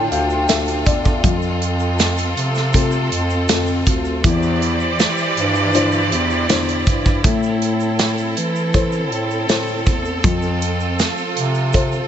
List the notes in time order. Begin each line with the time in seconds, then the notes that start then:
Already playing: D3 D4 F4 A4 G5 A5 C6
0.11 D2 F5, closed hi-hat
0.30 shaker
0.48 D2 D4 F4 A4 E5, snare, closed hi-hat, shaker
0.67 closed hi-hat, shaker
0.86 E2 D5, kick, closed hi-hat, shaker
1.05 kick, shaker
1.23 F2 F3 C4 A4, kick, closed hi-hat, shaker
1.42 shaker
1.62 closed hi-hat
1.80 shaker
1.99 snare, closed hi-hat, shaker
2.17 closed hi-hat, shaker
2.36 C3, closed hi-hat, shaker
2.55 snare, shaker
2.73 C4 F4 A4, kick, closed hi-hat, shaker
2.91 shaker
3.12 F2, closed hi-hat
3.30 shaker
3.48 F2 C4 F4 A4, snare, closed hi-hat, shaker
3.67 shaker
3.86 D2, kick, closed hi-hat, shaker
4.05 shaker
4.24 E2 E3 E4 G4 C5 D5, kick, closed hi-hat, shaker
4.43 shaker
4.62 closed hi-hat
4.80 shaker
4.99 snare, closed hi-hat, shaker
5.17 shaker
5.37 G2, closed hi-hat, shaker
5.55 shaker
5.74 D4 E4 C5, closed hi-hat, shaker
5.92 shaker
6.12 E2, closed hi-hat
6.30 shaker
6.49 E2 D4 E4 C5, snare, closed hi-hat, shaker
6.68 closed hi-hat, shaker
6.86 G2, kick, closed hi-hat, shaker
7.06 kick, shaker
7.24 A2 A3 C4 A4, kick, closed hi-hat, shaker
7.43 shaker
7.62 closed hi-hat
7.80 shaker
7.99 snare, closed hi-hat, shaker
8.18 shaker
8.37 E3, closed hi-hat, shaker
8.56 shaker
8.74 E4 A4 C5, kick, closed hi-hat, shaker
8.92 shaker
9.11 A2, closed hi-hat
9.31 shaker
9.49 A2 E4 A4 C5, snare, closed hi-hat, shaker
9.68 shaker
9.86 E2, kick, closed hi-hat, shaker
10.05 shaker
10.24 F2 F3 F4, kick, closed hi-hat, shaker
10.42 shaker
10.62 closed hi-hat, shaker
10.80 shaker
10.99 snare, closed hi-hat, shaker
11.18 shaker
11.37 C3, closed hi-hat
11.55 shaker
11.73 F4 A4 C5, kick, closed hi-hat, shaker
11.92 shaker